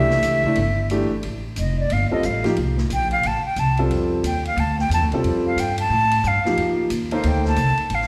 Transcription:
0.00 0.21 C2 medium
0.00 0.41 E3 medium
0.00 0.41 A3 medium
0.00 0.42 D4 medium
0.00 0.42 G4 medium
0.00 0.87 E5 loud
0.10 snare medium
0.23 0.54 C#2 medium
0.23 hi-hat pedal medium
0.23 ride medium
0.44 0.56 E3 medium
0.44 0.57 A3 medium
0.44 0.57 D4 medium
0.44 0.57 E4 medium
0.44 kick soft
0.55 1.07 G1 medium
0.55 ride medium
0.90 1.09 E3 medium
0.90 1.09 A3 medium
0.90 1.09 D4 medium
0.90 1.10 G4 medium
0.90 hi-hat pedal soft
0.90 ride medium
1.11 muted upright bass stroke soft
1.23 1.56 A1 medium
1.23 ride medium
1.56 1.90 F1 medium
1.56 1.77 D#5 medium
1.56 hi-hat pedal medium
1.56 ride medium
1.79 1.94 D5 medium
1.90 2.10 G1 medium
1.90 2.11 F5 medium
1.90 ride medium
2.11 2.23 G3 medium
2.11 2.23 C4 medium
2.11 2.23 F4 medium
2.11 2.23 A4 medium
2.11 2.27 D#5 medium
2.11 muted upright bass stroke soft
2.23 2.56 A1 medium
2.23 2.45 F5 medium
2.23 hi-hat pedal soft
2.23 ride medium
2.44 2.55 F3 medium
2.44 2.56 A#3 medium
2.44 2.56 D#4 medium
2.44 2.56 G4 medium
2.44 snare soft
2.44 ride soft
2.56 2.89 C2 medium
2.56 ride medium
2.77 snare medium
2.90 3.22 A#1 medium
2.90 3.11 G5 medium
2.90 hi-hat pedal medium
2.90 ride medium
3.11 3.28 F5 medium
3.11 ride soft
3.23 3.44 A1 medium
3.23 3.45 A5 medium
3.23 ride medium
3.45 3.61 G5 medium
3.45 muted upright bass stroke soft
3.56 3.89 C2 medium
3.56 3.79 A5 medium
3.56 hi-hat pedal soft
3.56 ride medium
3.77 4.22 G3 medium
3.77 4.22 C4 medium
3.77 4.22 F4 medium
3.77 4.22 A4 medium
3.77 ride soft
3.90 4.23 F2 medium
3.90 ride medium
4.23 4.56 D#2 medium
4.23 4.45 G5 medium
4.23 hi-hat pedal medium
4.23 ride medium
4.45 4.61 F5 medium
4.45 ride soft
4.56 4.89 D2 medium
4.56 4.79 A5 medium
4.56 ride medium
4.79 4.91 G5 medium
4.79 snare soft
4.89 5.01 E2 loud
4.89 hi-hat pedal medium
4.89 ride medium
4.94 5.05 A5 medium
5.01 5.12 D2 medium
5.12 5.23 C2 medium
5.12 5.56 G3 medium
5.12 5.56 C4 medium
5.12 5.56 F4 medium
5.12 5.56 A4 medium
5.12 ride soft
5.24 5.56 F2 medium
5.24 ride medium
5.46 5.61 F5 medium
5.56 5.89 G2 medium
5.56 5.79 G5 medium
5.56 hi-hat pedal medium
5.56 ride medium
5.78 6.29 A5 loud
5.78 ride medium
5.90 6.23 A2 medium
6.11 ride medium
6.24 6.43 G2 medium
6.24 6.80 F5 medium
6.24 hi-hat pedal medium
6.44 6.89 F3 medium
6.44 6.89 A#3 medium
6.44 6.89 D#4 medium
6.44 6.89 G4 medium
6.44 muted upright bass stroke soft
6.44 snare soft
6.57 6.89 F2 medium
6.57 ride medium
6.90 7.23 D#2 medium
6.90 hi-hat pedal medium
6.90 ride medium
7.11 7.55 A#3 medium
7.11 7.55 D#4 medium
7.11 7.55 A4 medium
7.11 7.55 C5 medium
7.11 7.29 F5 medium
7.11 ride soft
7.23 7.56 D2 medium
7.23 ride medium
7.27 7.47 G5 medium
7.45 7.96 A5 loud
7.45 snare soft
7.56 7.77 C2 medium
7.56 hi-hat pedal medium
7.56 ride medium
7.77 muted upright bass stroke soft
7.77 ride soft
7.90 8.07 A1 medium
7.90 ride medium
7.95 8.07 F5 medium
8.01 snare soft

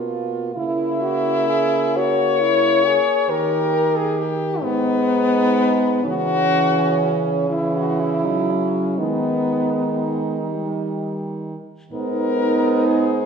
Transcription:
0.00 0.53 B2 medium
0.00 0.55 A#3 medium
0.00 0.52 F4 medium
0.56 2.98 C#3 medium
0.56 4.31 A#3 medium
0.56 1.03 E4 medium
0.56 1.98 E4 loud
1.02 1.49 F#4 medium
1.49 1.98 G#4 medium
1.97 2.43 F#4 medium
1.97 3.32 C#5 loud
2.41 2.87 E4 medium
2.86 3.31 G#4 medium
3.29 4.58 D#3 medium
3.29 4.35 G4 medium
3.29 3.99 A#4 loud
3.97 4.20 G#4 medium
4.19 4.64 G4 loud
4.61 6.03 G#2 medium
4.61 6.01 G#3 medium
4.61 6.05 B3 loud
4.61 6.01 D#4 medium
6.04 8.94 C#3 medium
6.04 7.46 E3 medium
6.04 7.47 C#4 medium
6.04 7.18 F#4 loud
7.50 8.25 E3 medium
7.50 8.95 E4 medium
7.50 7.74 E4 medium
7.76 8.01 F#4 medium
8.00 8.27 E4 medium
8.24 9.00 F#3 medium
8.24 8.52 D#4 medium
8.50 9.00 C#4 medium
8.98 11.56 D#3 medium
8.98 10.47 G#3 medium
8.98 10.46 B3 medium
8.98 11.16 D#4 medium
10.45 11.59 G3 medium
11.92 13.26 G#2 medium
11.92 13.26 B3 medium
11.92 13.26 D#4 loud
11.92 12.88 A#4 loud
12.86 13.26 G#4 medium

